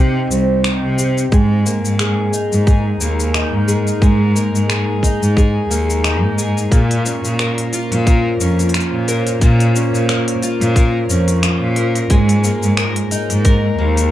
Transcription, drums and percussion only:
0.31 cabasa medium
0.64 finger snap loud
0.64 cabasa soft
0.99 cabasa medium
1.18 cabasa soft
1.32 kick loud
1.32 cabasa soft
1.66 cabasa medium
1.85 cabasa soft
1.99 finger snap medium
1.99 cabasa soft
2.34 cabasa medium
2.53 cabasa soft
2.67 kick loud
2.67 cabasa soft
3.01 cabasa medium
3.20 cabasa soft
3.34 finger snap medium
3.34 cabasa soft
3.69 cabasa medium
3.87 cabasa soft
4.02 kick loud
4.02 cabasa soft
4.36 cabasa medium
4.55 cabasa soft
4.70 finger snap medium
4.70 cabasa soft
5.03 kick medium
5.03 cabasa medium
5.23 cabasa soft
5.37 kick loud
5.37 cabasa soft
5.71 cabasa medium
5.90 cabasa soft
6.04 finger snap medium
6.04 cabasa soft
6.39 cabasa medium
6.58 cabasa soft
6.72 kick loud
6.72 open hi-hat medium
6.72 cabasa soft
6.91 open hi-hat soft
7.06 cabasa medium
7.25 cabasa soft
7.39 finger snap medium
7.39 cabasa soft
7.58 open hi-hat soft
7.73 open hi-hat soft
7.73 cabasa medium
7.92 open hi-hat soft
7.92 cabasa soft
8.07 kick loud
8.07 open hi-hat soft
8.07 cabasa soft
8.41 cabasa medium
8.59 open hi-hat soft
8.59 cabasa soft
8.69 open hi-hat soft
8.74 finger snap medium
8.74 open hi-hat medium
8.74 cabasa soft
8.80 open hi-hat soft
9.08 open hi-hat soft
9.08 cabasa medium
9.27 open hi-hat soft
9.27 cabasa soft
9.41 kick loud
9.41 open hi-hat medium
9.41 cabasa soft
9.60 open hi-hat soft
9.76 cabasa medium
9.95 cabasa soft
10.09 finger snap medium
10.09 cabasa soft
10.28 open hi-hat medium
10.43 open hi-hat soft
10.43 cabasa medium
10.61 open hi-hat soft
10.61 cabasa soft
10.76 kick loud
10.76 open hi-hat medium
10.76 cabasa soft
11.10 cabasa medium
11.28 open hi-hat soft
11.28 cabasa soft
11.43 finger snap loud
11.43 open hi-hat medium
11.43 cabasa soft
11.76 open hi-hat soft
11.95 open hi-hat soft
11.95 cabasa soft
12.10 kick loud
12.10 open hi-hat medium
12.10 cabasa soft
12.29 open hi-hat soft
12.44 cabasa medium
12.63 cabasa soft
12.77 finger snap medium
12.77 cabasa soft
12.96 open hi-hat medium
13.11 open hi-hat soft
13.11 cabasa medium
13.30 open hi-hat soft
13.30 cabasa soft
13.45 kick loud
13.45 open hi-hat medium
13.45 cabasa soft
13.97 open hi-hat soft
13.97 cabasa soft

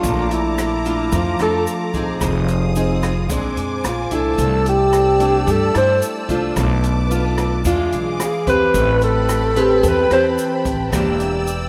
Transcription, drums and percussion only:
0.04 kick medium
0.04 closed hi-hat medium
0.04 shaker medium
0.31 closed hi-hat soft
0.31 shaker soft
0.58 cross-stick medium
0.58 closed hi-hat soft
0.58 shaker medium
0.85 closed hi-hat soft
0.85 shaker soft
1.12 kick medium
1.12 closed hi-hat medium
1.12 shaker medium
1.39 cross-stick medium
1.39 closed hi-hat soft
1.39 shaker soft
1.67 closed hi-hat soft
1.67 shaker medium
1.94 kick soft
1.94 closed hi-hat soft
1.94 shaker soft
2.21 kick medium
2.21 cross-stick medium
2.21 closed hi-hat medium
2.21 shaker medium
2.48 closed hi-hat soft
2.48 shaker soft
2.75 closed hi-hat soft
2.75 shaker medium
3.03 cross-stick medium
3.03 closed hi-hat soft
3.03 shaker soft
3.30 kick medium
3.30 closed hi-hat medium
3.30 shaker medium
3.57 closed hi-hat soft
3.57 shaker soft
3.84 cross-stick medium
3.84 closed hi-hat soft
3.84 shaker medium
4.11 closed hi-hat soft
4.11 shaker soft
4.38 kick medium
4.38 closed hi-hat medium
4.38 shaker medium
4.66 closed hi-hat soft
4.66 shaker soft
4.93 cross-stick medium
4.93 closed hi-hat soft
4.93 shaker medium
5.20 closed hi-hat soft
5.20 shaker soft
5.47 kick medium
5.47 closed hi-hat medium
5.47 shaker medium
5.75 cross-stick medium
5.75 closed hi-hat soft
5.75 shaker soft
6.02 closed hi-hat soft
6.02 shaker medium
6.29 kick soft
6.29 closed hi-hat soft
6.29 shaker soft
6.56 kick medium
6.56 cross-stick medium
6.56 closed hi-hat medium
6.56 shaker medium
6.83 closed hi-hat soft
6.83 shaker soft
7.11 closed hi-hat soft
7.11 shaker medium
7.38 cross-stick medium
7.38 closed hi-hat soft
7.38 shaker soft
7.65 kick medium
7.65 closed hi-hat medium
7.65 shaker medium
7.92 closed hi-hat soft
7.92 shaker soft
8.20 cross-stick medium
8.20 closed hi-hat soft
8.20 shaker medium
8.47 kick soft
8.47 closed hi-hat soft
8.47 shaker soft
8.74 kick medium
8.74 closed hi-hat medium
8.74 shaker medium
9.01 closed hi-hat soft
9.01 shaker soft
9.29 cross-stick medium
9.29 closed hi-hat soft
9.29 shaker medium
9.56 closed hi-hat soft
9.56 shaker soft
9.83 kick medium
9.83 closed hi-hat medium
9.83 shaker medium
10.11 cross-stick medium
10.11 closed hi-hat soft
10.11 shaker soft
10.38 closed hi-hat soft
10.38 shaker medium
10.65 kick medium
10.65 closed hi-hat soft
10.65 shaker soft
10.93 kick medium
10.93 cross-stick medium
10.93 closed hi-hat medium
10.93 shaker medium
11.20 closed hi-hat soft
11.20 shaker soft
11.47 closed hi-hat soft
11.47 shaker medium

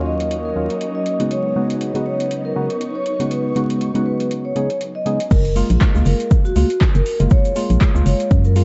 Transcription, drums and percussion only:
0.20 closed hi-hat soft
0.31 closed hi-hat medium
0.70 closed hi-hat soft
0.81 closed hi-hat medium
1.06 closed hi-hat soft
1.20 closed hi-hat medium
1.31 closed hi-hat medium
1.70 closed hi-hat soft
1.81 closed hi-hat medium
1.95 closed hi-hat soft
2.20 closed hi-hat soft
2.31 closed hi-hat medium
2.70 closed hi-hat soft
2.81 closed hi-hat medium
3.06 closed hi-hat soft
3.20 closed hi-hat medium
3.31 closed hi-hat medium
3.56 closed hi-hat soft
3.70 closed hi-hat medium
3.81 closed hi-hat medium
3.95 closed hi-hat soft
4.20 closed hi-hat medium
4.31 closed hi-hat medium
4.56 closed hi-hat soft
4.70 closed hi-hat medium
4.81 closed hi-hat medium
5.06 closed hi-hat medium
5.20 closed hi-hat medium
5.31 kick loud
5.31 closed hi-hat medium
5.31 crash loud
5.31 shaker medium
5.45 closed hi-hat soft
5.45 shaker soft
5.56 open hi-hat loud
5.56 shaker medium
5.70 closed hi-hat medium
5.70 shaker soft
5.81 kick loud
5.81 clap loud
5.81 closed hi-hat medium
5.81 shaker medium
5.95 shaker soft
6.06 open hi-hat medium
6.06 shaker loud
6.20 closed hi-hat medium
6.20 shaker soft
6.31 kick loud
6.31 closed hi-hat medium
6.31 shaker medium
6.45 shaker soft
6.56 open hi-hat loud
6.56 shaker medium
6.70 closed hi-hat medium
6.70 shaker soft
6.81 kick loud
6.81 clap loud
6.81 closed hi-hat medium
6.81 shaker medium
6.95 closed hi-hat soft
6.95 shaker soft
7.06 open hi-hat medium
7.06 shaker loud
7.19 closed hi-hat medium
7.19 shaker soft
7.30 kick loud
7.30 closed hi-hat medium
7.30 shaker medium
7.45 closed hi-hat soft
7.45 shaker soft
7.56 open hi-hat loud
7.56 shaker loud
7.70 closed hi-hat medium
7.70 shaker soft
7.81 kick loud
7.81 clap loud
7.81 closed hi-hat medium
7.81 shaker medium
7.96 shaker soft
8.06 open hi-hat loud
8.06 shaker medium
8.20 closed hi-hat medium
8.20 shaker soft
8.31 kick loud
8.31 closed hi-hat medium
8.31 shaker medium
8.44 shaker soft
8.56 open hi-hat loud
8.56 shaker loud

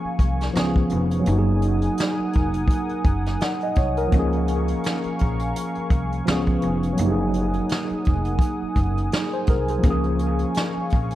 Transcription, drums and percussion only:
0.19 kick medium
0.19 closed hi-hat medium
0.41 snare soft
0.41 closed hi-hat soft
0.55 snare loud
0.55 closed hi-hat medium
0.76 kick medium
0.89 closed hi-hat medium
1.11 closed hi-hat medium
1.26 closed hi-hat medium
1.62 closed hi-hat medium
1.82 closed hi-hat medium
1.97 snare loud
1.97 closed hi-hat medium
2.33 kick medium
2.33 closed hi-hat medium
2.53 closed hi-hat medium
2.68 kick medium
2.68 closed hi-hat loud
2.89 closed hi-hat soft
3.04 kick medium
3.04 closed hi-hat medium
3.26 snare soft
3.26 closed hi-hat medium
3.40 snare loud
3.40 closed hi-hat medium
3.60 closed hi-hat soft
3.75 kick loud
3.75 closed hi-hat medium
3.97 closed hi-hat medium
4.12 kick loud
4.12 closed hi-hat medium
4.32 closed hi-hat soft
4.48 closed hi-hat medium
4.68 closed hi-hat soft
4.84 snare loud
4.84 closed hi-hat medium
5.03 closed hi-hat soft
5.19 kick medium
5.19 closed hi-hat medium
5.39 closed hi-hat soft
5.56 closed hi-hat medium
5.75 closed hi-hat soft
5.90 kick medium
5.90 closed hi-hat medium
6.12 closed hi-hat soft
6.27 snare loud
6.27 closed hi-hat medium
6.46 kick medium
6.46 closed hi-hat soft
6.62 closed hi-hat medium
6.83 closed hi-hat medium
6.97 closed hi-hat medium
7.34 closed hi-hat medium
7.53 closed hi-hat medium
7.69 snare loud
7.69 closed hi-hat medium
7.89 closed hi-hat soft
8.05 kick medium
8.05 closed hi-hat medium
8.25 closed hi-hat medium
8.39 kick loud
8.39 closed hi-hat medium
8.76 kick medium
8.76 closed hi-hat medium
8.97 closed hi-hat soft
9.12 snare loud
9.12 closed hi-hat medium
9.32 closed hi-hat soft
9.47 kick loud
9.47 closed hi-hat medium
9.68 closed hi-hat medium
9.83 kick loud
9.83 closed hi-hat medium
10.04 closed hi-hat soft
10.19 closed hi-hat medium
10.39 closed hi-hat soft
10.54 snare loud
10.54 closed hi-hat medium
10.90 kick medium
10.90 closed hi-hat medium
11.10 closed hi-hat medium

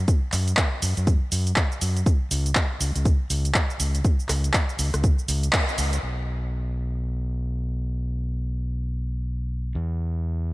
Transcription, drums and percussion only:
0.08 kick loud
0.08 closed hi-hat medium
0.08 cabasa soft
0.32 clap soft
0.32 open hi-hat loud
0.32 cabasa medium
0.48 closed hi-hat medium
0.48 cabasa soft
0.57 kick loud
0.57 clap loud
0.57 closed hi-hat soft
0.57 cabasa soft
0.82 open hi-hat loud
0.82 cabasa medium
0.97 closed hi-hat medium
0.97 cabasa soft
1.07 kick loud
1.07 closed hi-hat soft
1.07 cabasa soft
1.32 open hi-hat loud
1.32 cabasa medium
1.47 closed hi-hat medium
1.47 cabasa soft
1.56 kick loud
1.56 clap loud
1.56 closed hi-hat medium
1.56 cabasa soft
1.72 cabasa soft
1.81 open hi-hat loud
1.81 cabasa medium
1.97 closed hi-hat medium
1.97 cabasa soft
2.06 kick loud
2.06 closed hi-hat medium
2.06 cabasa soft
2.31 open hi-hat loud
2.31 cabasa medium
2.46 closed hi-hat medium
2.46 cabasa soft
2.55 kick loud
2.55 clap loud
2.55 closed hi-hat medium
2.55 cabasa soft
2.81 open hi-hat loud
2.81 cabasa medium
2.96 closed hi-hat medium
2.96 cabasa soft
3.05 kick loud
3.05 closed hi-hat medium
3.05 cabasa soft
3.30 open hi-hat loud
3.30 cabasa medium
3.45 closed hi-hat medium
3.45 cabasa soft
3.54 kick loud
3.54 clap loud
3.54 closed hi-hat medium
3.54 cabasa soft
3.70 cabasa soft
3.80 open hi-hat loud
3.80 cabasa medium
3.95 closed hi-hat medium
3.95 cabasa soft
4.05 kick loud
4.05 closed hi-hat medium
4.05 cabasa soft
4.20 cabasa soft
4.29 cross-stick medium
4.29 clap soft
4.29 open hi-hat loud
4.29 cabasa medium
4.44 closed hi-hat medium
4.44 cabasa soft
4.53 kick loud
4.53 clap loud
4.53 closed hi-hat medium
4.53 cabasa soft
4.69 cabasa soft
4.79 open hi-hat loud
4.79 cabasa medium
4.94 cross-stick medium
4.94 closed hi-hat medium
4.94 cabasa soft
5.04 kick loud
5.04 closed hi-hat medium
5.04 cabasa soft
5.19 cabasa soft
5.28 open hi-hat loud
5.28 cabasa medium
5.43 closed hi-hat medium
5.43 cabasa soft
5.53 kick loud
5.53 clap loud
5.53 closed hi-hat medium
5.53 cabasa soft
5.68 cabasa soft
5.78 open hi-hat loud
5.78 cabasa medium
5.93 closed hi-hat medium
5.93 cabasa soft

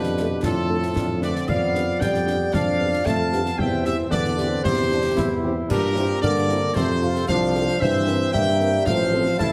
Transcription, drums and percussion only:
0.03 snare soft
0.17 snare medium
0.43 concert bass drum medium
0.43 snare medium
0.82 snare soft
0.96 concert bass drum medium
0.96 snare medium
1.22 snare medium
1.36 snare medium
1.48 concert bass drum medium
1.48 crash soft
1.75 snare medium
2.01 concert bass drum medium
2.01 snare medium
2.14 snare soft
2.27 snare medium
2.53 concert bass drum medium
2.53 snare medium
2.93 snare soft
3.06 concert bass drum medium
3.06 snare medium
3.32 snare medium
3.46 snare medium
3.59 concert bass drum medium
3.85 snare medium
4.12 concert bass drum medium
4.12 snare medium
4.25 snare soft
4.38 snare medium
4.64 concert bass drum medium
4.64 snare medium
5.17 concert bass drum medium
5.17 snare medium
5.70 concert bass drum medium
5.70 crash medium
5.96 snare medium
6.23 concert bass drum medium
6.23 snare medium
6.36 snare medium
6.49 snare medium
6.75 concert bass drum medium
6.75 snare medium
7.15 snare medium
7.28 concert bass drum medium
7.28 snare medium
7.55 snare medium
7.68 snare medium
7.81 concert bass drum medium
8.08 snare medium
8.34 concert bass drum medium
8.34 snare medium
8.47 snare medium
8.60 snare medium
8.86 concert bass drum medium
8.86 snare medium
9.26 snare medium
9.39 concert bass drum medium
9.39 snare medium

